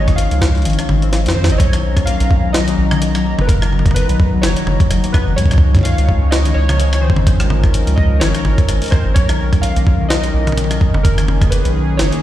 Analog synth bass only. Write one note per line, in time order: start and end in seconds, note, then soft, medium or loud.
0.00 0.28 G#1 loud
0.31 0.67 C#2 medium
0.65 0.77 G#1 loud
0.89 1.27 G#1 loud
1.26 1.35 F2 medium
1.36 1.51 F2 medium
1.50 1.58 G#1 loud
1.60 2.17 B1 loud
2.21 2.76 B1 loud
2.78 3.35 B1 medium
3.38 4.06 F#1 loud
4.09 4.45 B1 loud
4.43 4.54 F#1 loud
4.67 4.78 F#1 medium
4.91 5.02 F#1 loud
5.27 5.36 F#1 medium
5.38 5.95 C#2 loud
5.98 6.53 C#2 loud
6.56 7.13 C#2 medium
7.16 7.84 G#1 loud
7.87 8.23 C#2 medium
8.21 8.33 G#1 loud
8.45 8.56 G#1 loud
8.69 8.80 G#1 loud
9.06 9.14 G#1 loud
9.16 9.73 B1 loud
9.77 10.31 B1 loud
10.34 10.91 B1 medium
10.94 11.62 F#1 loud
11.65 12.01 B1 loud
11.99 12.10 F#1 loud